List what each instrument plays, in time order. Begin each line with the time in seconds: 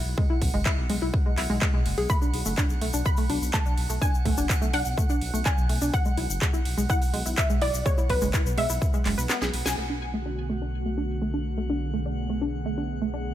Already playing: synth texture F#5
0.06 detuned saw bass B1
0.18 synth arpeggio sound G#3, kick
0.30 synth arpeggio sound E4
0.42 detuned saw bass B1, kick, open hi-hat
0.54 detuned saw bass F#1, synth arpeggio sound G#3
0.66 synth arpeggio sound E4, kick, clap
0.78 detuned saw bass B1
0.90 detuned saw bass B1, synth arpeggio sound G#3, open hi-hat
1.02 detuned saw bass B1, synth arpeggio sound E4
1.14 kick
1.26 synth arpeggio sound G#3
1.38 detuned saw bass B1, synth arpeggio sound E4, clap, open hi-hat
1.50 detuned saw bass B1, synth arpeggio sound G#3
1.62 synth arpeggio sound G#3, kick, clap
1.74 detuned saw bass B1, synth arpeggio sound G#3
1.86 detuned saw bass F#1, open hi-hat
1.98 detuned saw bass B1, synth arpeggio sound G#4, open hi-hat
2.09 synth arpeggio sound A3, synth pluck B5, kick, shaker
2.22 synth arpeggio sound D4, shaker
2.34 detuned saw bass B1, open hi-hat
2.45 detuned saw bass F#1, synth arpeggio sound A3, shaker
2.58 synth arpeggio sound D4, kick, clap, shaker
2.70 detuned saw bass B1, shaker
2.81 detuned saw bass B1, synth arpeggio sound A3, open hi-hat
2.93 detuned saw bass B1, synth arpeggio sound D4, shaker
3.05 synth pluck B5, kick, shaker
3.17 synth arpeggio sound A3, open hi-hat, shaker
3.30 detuned saw bass B1, synth arpeggio sound D4, open hi-hat
3.42 detuned saw bass B1, shaker
3.54 synth arpeggio sound A3, synth pluck A5, kick, clap, shaker
3.66 detuned saw bass B1, synth arpeggio sound D4, shaker
3.78 detuned saw bass B1, open hi-hat
3.90 detuned saw bass B1, synth arpeggio sound A3, shaker
4.01 synth arpeggio sound D4, synth pluck G#5, kick, shaker
4.14 shaker
4.25 detuned saw bass B1, synth arpeggio sound A3, kick, open hi-hat
4.37 detuned saw bass F#1, synth arpeggio sound D4, shaker
4.50 kick, clap, shaker
4.62 detuned saw bass B1, synth arpeggio sound A3, shaker
4.73 detuned saw bass B1, synth arpeggio sound D4, synth pluck F#5, open hi-hat
4.85 detuned saw bass B1, shaker
4.98 synth arpeggio sound A3, kick, shaker
5.10 synth arpeggio sound D4, shaker
5.21 detuned saw bass B1, open hi-hat
5.34 detuned saw bass B1, synth arpeggio sound A3, shaker
5.46 synth arpeggio sound D4, synth pluck G#5, kick, clap, shaker
5.58 detuned saw bass B1, shaker
5.69 detuned saw bass B1, synth arpeggio sound A3, open hi-hat
5.81 detuned saw bass B1, synth arpeggio sound D4, shaker
5.94 synth pluck F#5, kick, shaker
6.05 synth arpeggio sound G#3, shaker
6.17 detuned saw bass B1, synth arpeggio sound E4, open hi-hat
6.30 detuned saw bass F#1, shaker
6.41 synth arpeggio sound G#3, kick, clap, shaker
6.54 detuned saw bass B1, synth arpeggio sound E4, shaker
6.65 detuned saw bass B1, open hi-hat
6.78 detuned saw bass B1, synth arpeggio sound G#3, shaker
6.89 synth arpeggio sound E4, synth pluck F#5, kick, shaker
7.02 open hi-hat, shaker
7.14 detuned saw bass B1, synth arpeggio sound G#3, open hi-hat
7.26 detuned saw bass B1, synth arpeggio sound E4, shaker
7.37 synth pluck E5, kick, clap, shaker
7.50 detuned saw bass B1, synth arpeggio sound G#3, shaker
7.62 detuned saw bass B1, synth arpeggio sound E4, synth pluck D5, open hi-hat
7.74 detuned saw bass B1, shaker
7.86 synth arpeggio sound G#3, synth pluck C#5, kick, shaker
7.98 synth arpeggio sound E4, shaker
8.10 detuned saw bass B1, synth pluck B4, kick, open hi-hat
8.21 detuned saw bass F#1, synth arpeggio sound G#3, shaker
8.34 synth arpeggio sound E4, kick, clap, shaker
8.46 detuned saw bass B1, shaker
8.58 detuned saw bass B1, synth arpeggio sound G#3, synth pluck E5, open hi-hat
8.69 detuned saw bass B1, synth arpeggio sound E4, shaker
8.82 kick, shaker
8.94 synth arpeggio sound G#3, shaker
9.06 detuned saw bass F#1, synth arpeggio sound G#3, clap, open hi-hat
9.18 detuned saw bass B1, synth arpeggio sound B4, shaker
9.30 synth arpeggio sound B3, snare, clap, shaker
9.42 detuned saw bass B1, synth arpeggio sound G#4, snare, shaker
9.54 detuned saw bass B1, open hi-hat
9.66 detuned saw bass B1, synth arpeggio sound G#5, snare, open hi-hat, shaker
9.78 analog synth pad D3 A3 B3 F#4, synth arpeggio sound A3, synth texture F#5
9.90 synth arpeggio sound D4
10.14 synth arpeggio sound A3
10.26 synth arpeggio sound D4
10.50 synth arpeggio sound A3
10.62 synth arpeggio sound D4
10.86 synth arpeggio sound A3
10.98 synth arpeggio sound D4
11.22 synth arpeggio sound A3
11.34 synth arpeggio sound D4
11.58 synth arpeggio sound A3
11.70 synth arpeggio sound D4, analog synth pad G#4
11.94 synth arpeggio sound A3
12.06 synth arpeggio sound D4
12.30 synth arpeggio sound A3
12.42 synth arpeggio sound D4
12.66 synth arpeggio sound A3
12.78 synth arpeggio sound D4
13.02 synth arpeggio sound A3
13.14 synth arpeggio sound D4